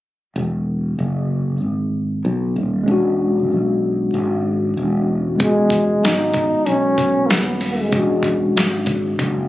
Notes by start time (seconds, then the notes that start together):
0.36 E1
0.99 F#1
1.62 G#1
2.25 B1
2.56 D#1
2.84 G#3 C#4
2.88 E1 D4 F#4
3.51 B1
4.14 G#1
4.77 E1
5.36 G#3 B3
5.40 E1 G#3 C#4 F#4, kick, closed hi-hat
5.70 kick, closed hi-hat
6.03 G#1 D#4, snare, closed hi-hat
6.34 kick, closed hi-hat
6.54 muted fretless electric bass stroke
6.66 B1 C#4, closed hi-hat
6.98 kick, closed hi-hat
7.26 A#3
7.30 D#1 B3, snare, closed hi-hat
7.61 open hi-hat
7.81 G#3
7.89 E1 G#3 C#4, kick, closed hi-hat
7.94 D4 F#4
8.23 kick, closed hi-hat
8.56 G#1, snare, closed hi-hat
8.86 kick, closed hi-hat
9.19 F#1, kick, closed hi-hat